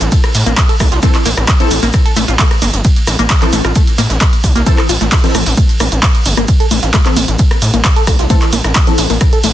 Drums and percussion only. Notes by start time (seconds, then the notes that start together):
0.01 closed hi-hat, shaker
0.12 kick, closed hi-hat, ride, shaker
0.24 cross-stick, closed hi-hat, shaker
0.35 open hi-hat, shaker
0.46 closed hi-hat, shaker
0.57 kick, snare, clap, closed hi-hat, ride, shaker
0.69 closed hi-hat, shaker
0.79 kick, cross-stick, open hi-hat, shaker
0.91 snare, closed hi-hat, shaker
1.02 kick, closed hi-hat, ride, shaker
1.15 clap, closed hi-hat, shaker
1.25 open hi-hat, shaker
1.37 cross-stick, snare, closed hi-hat, shaker
1.48 kick, snare, clap, closed hi-hat, ride, shaker
1.60 closed hi-hat, shaker
1.71 open hi-hat, shaker
1.83 open hi-hat, shaker
1.93 kick, cross-stick, closed hi-hat, ride, shaker
2.06 closed hi-hat, shaker
2.16 open hi-hat, shaker
2.28 closed hi-hat, shaker
2.39 kick, snare, clap, closed hi-hat, ride, shaker
2.51 cross-stick, closed hi-hat, shaker
2.62 open hi-hat, shaker
2.73 closed hi-hat, shaker
2.85 kick, closed hi-hat, ride, shaker
2.96 closed hi-hat, shaker
3.07 cross-stick, open hi-hat, shaker
3.19 closed hi-hat, shaker
3.30 kick, snare, clap, closed hi-hat, ride, shaker
3.42 clap, closed hi-hat, shaker
3.53 open hi-hat, shaker
3.65 cross-stick, closed hi-hat, shaker
3.75 kick, closed hi-hat, ride, shaker
3.87 closed hi-hat, shaker
3.98 snare, open hi-hat, shaker
4.10 snare, closed hi-hat, shaker
4.20 kick, cross-stick, snare, clap, closed hi-hat, ride, shaker
4.33 closed hi-hat, shaker
4.44 kick, open hi-hat, shaker
4.55 snare, closed hi-hat, shaker
4.66 kick, closed hi-hat, ride, shaker
4.78 cross-stick, clap, closed hi-hat, shaker
4.89 open hi-hat, shaker
5.01 snare, closed hi-hat, shaker
5.12 kick, snare, clap, closed hi-hat, ride, shaker
5.17 snare, shaker
5.24 snare, closed hi-hat, shaker
5.28 snare, shaker
5.34 cross-stick, open hi-hat, shaker
5.46 open hi-hat, shaker
5.57 kick, closed hi-hat, ride, shaker
5.69 closed hi-hat, shaker
5.80 cross-stick, open hi-hat, shaker
5.92 closed hi-hat, shaker
6.03 kick, snare, clap, closed hi-hat, ride, shaker
6.15 closed hi-hat, shaker
6.24 open hi-hat, shaker
6.37 cross-stick, closed hi-hat, shaker
6.48 kick, closed hi-hat, ride, shaker
6.60 closed hi-hat, shaker
6.71 open hi-hat, shaker
6.82 snare, closed hi-hat, shaker
6.94 kick, cross-stick, snare, clap, closed hi-hat, ride, shaker
7.06 clap, closed hi-hat, shaker
7.16 open hi-hat, shaker
7.28 closed hi-hat, shaker
7.38 kick, closed hi-hat, ride, shaker
7.51 cross-stick, closed hi-hat, shaker
7.62 open hi-hat, shaker
7.74 closed hi-hat, shaker
7.84 kick, snare, clap, closed hi-hat, ride, shaker
7.96 closed hi-hat, shaker
8.07 kick, cross-stick, open hi-hat, shaker
8.19 snare, closed hi-hat, shaker
8.30 kick, closed hi-hat, ride, shaker
8.42 clap, closed hi-hat, shaker
8.53 open hi-hat, shaker
8.64 cross-stick, snare, closed hi-hat, shaker
8.75 kick, snare, clap, closed hi-hat, ride, shaker
8.87 closed hi-hat, shaker
8.97 open hi-hat, shaker
9.10 open hi-hat, shaker
9.21 kick, cross-stick, closed hi-hat, ride, shaker
9.33 closed hi-hat, shaker
9.44 open hi-hat, shaker